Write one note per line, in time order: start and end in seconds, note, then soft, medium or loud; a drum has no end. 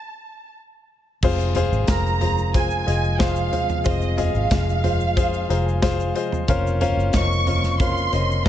0.00 0.53 A5 loud
1.23 1.68 F1 loud
1.23 6.45 C3 medium
1.23 2.18 C3 medium
1.23 6.45 F3 medium
1.23 6.45 G#3 medium
1.23 8.49 F4 medium
1.23 1.49 F4 loud
1.23 1.48 G#4 loud
1.23 1.49 C5 loud
1.23 kick loud
1.23 crash medium
1.23 shaker medium
1.39 closed hi-hat soft
1.39 shaker medium
1.55 1.81 F4 loud
1.55 1.81 G#4 loud
1.55 1.82 C5 loud
1.55 closed hi-hat medium
1.55 floor tom medium
1.55 shaker medium
1.72 1.87 G#1 loud
1.72 shaker soft
1.88 2.83 F1 loud
1.88 2.14 F4 medium
1.88 2.14 G#4 medium
1.88 2.15 A#4 medium
1.88 2.50 A#5 loud
1.88 kick loud
1.88 snare loud
1.88 closed hi-hat loud
1.88 shaker medium
2.07 shaker soft
2.21 2.46 F4 medium
2.21 2.47 G#4 medium
2.21 2.47 C5 medium
2.21 closed hi-hat medium
2.21 floor tom medium
2.38 shaker medium
2.54 2.79 F4 medium
2.54 2.80 G#4 medium
2.54 2.80 C5 medium
2.54 3.21 G#5 loud
2.54 kick loud
2.54 closed hi-hat medium
2.54 shaker medium
2.71 shaker medium
2.86 3.49 F1 medium
2.86 3.12 F4 medium
2.86 3.12 G#4 medium
2.86 3.12 D#5 medium
2.86 closed hi-hat medium
3.04 shaker soft
3.18 3.45 F4 medium
3.18 3.45 G#4 medium
3.18 3.45 C5 loud
3.18 kick loud
3.18 snare loud
3.18 closed hi-hat medium
3.18 shaker medium
3.22 3.87 F5 loud
3.36 shaker medium
3.51 3.78 F4 medium
3.51 3.78 G#4 medium
3.51 3.78 C5 medium
3.51 closed hi-hat medium
3.51 floor tom medium
3.69 floor tom medium
3.69 shaker soft
3.84 4.32 F1 loud
3.84 4.80 C3 medium
3.84 4.10 F4 medium
3.84 4.10 G#4 medium
3.84 4.11 C5 medium
3.84 4.20 D#5 medium
3.84 kick loud
3.84 closed hi-hat medium
3.84 shaker medium
4.01 shaker soft
4.17 4.43 F4 medium
4.17 4.43 G#4 medium
4.17 4.44 D#5 loud
4.17 closed hi-hat medium
4.17 floor tom medium
4.17 shaker medium
4.21 6.17 F5 loud
4.34 4.50 G#1 medium
4.34 shaker soft
4.51 5.46 F1 loud
4.51 4.76 F4 medium
4.51 4.77 G#4 medium
4.51 4.77 D#5 medium
4.51 kick loud
4.51 snare loud
4.51 closed hi-hat loud
4.51 shaker medium
4.69 shaker soft
4.83 5.09 F4 medium
4.83 5.09 G#4 medium
4.83 5.10 C5 medium
4.83 closed hi-hat medium
4.83 floor tom medium
5.00 shaker medium
5.16 5.42 F4 loud
5.16 5.42 G#4 medium
5.16 5.42 C5 loud
5.16 kick loud
5.16 closed hi-hat medium
5.16 shaker medium
5.33 shaker medium
5.49 6.12 F1 medium
5.49 5.75 F4 medium
5.49 5.75 G#4 medium
5.49 5.76 C5 loud
5.49 5.65 A#5 medium
5.49 closed hi-hat medium
5.66 5.81 G#5 medium
5.66 shaker medium
5.82 6.08 F4 loud
5.82 6.08 G#4 loud
5.82 6.08 C5 loud
5.82 5.98 G#5 medium
5.82 kick loud
5.82 snare loud
5.82 closed hi-hat medium
5.82 shaker medium
5.99 6.15 F5 medium
5.99 shaker medium
6.15 6.41 F4 medium
6.15 6.41 G#4 medium
6.15 6.41 C5 loud
6.15 6.46 D#5 medium
6.15 closed hi-hat medium
6.32 floor tom medium
6.32 shaker soft
6.48 6.94 F1 loud
6.48 8.49 C#3 medium
6.48 7.43 F3 medium
6.48 8.49 A#3 medium
6.48 8.49 C4 medium
6.48 6.74 C#4 loud
6.48 6.74 F4 loud
6.48 6.74 A#4 loud
6.48 6.74 C5 loud
6.48 6.75 F5 loud
6.48 kick loud
6.48 closed hi-hat medium
6.48 shaker medium
6.67 shaker medium
6.81 7.07 C#4 loud
6.81 7.07 F4 loud
6.81 7.07 A#4 loud
6.81 7.07 C5 loud
6.81 7.07 F5 loud
6.81 closed hi-hat medium
6.81 floor tom medium
6.81 shaker medium
6.97 7.13 F#1 loud
6.97 shaker soft
7.13 8.09 F1 loud
7.13 7.40 C#4 medium
7.13 7.40 F4 medium
7.13 7.40 A#4 medium
7.13 7.40 C5 medium
7.13 7.40 D#5 medium
7.13 7.77 C#6 loud
7.13 kick loud
7.13 snare loud
7.13 closed hi-hat loud
7.13 shaker medium
7.32 shaker soft
7.47 7.73 C#4 medium
7.47 7.73 F4 medium
7.47 7.73 A#4 medium
7.47 7.73 C5 medium
7.47 7.73 D#5 medium
7.47 closed hi-hat medium
7.47 floor tom medium
7.63 snare soft
7.63 shaker soft
7.79 8.05 C#4 medium
7.79 8.06 F4 medium
7.79 8.06 A#4 medium
7.79 8.06 C5 medium
7.79 8.06 F5 medium
7.79 8.46 C6 loud
7.79 kick loud
7.79 closed hi-hat medium
7.79 shaker medium
7.97 shaker medium
8.12 8.49 F1 medium
8.12 8.38 C#4 medium
8.12 8.38 F4 medium
8.12 8.38 A#4 medium
8.12 8.38 C5 medium
8.12 8.39 D#5 medium
8.12 closed hi-hat medium
8.31 shaker soft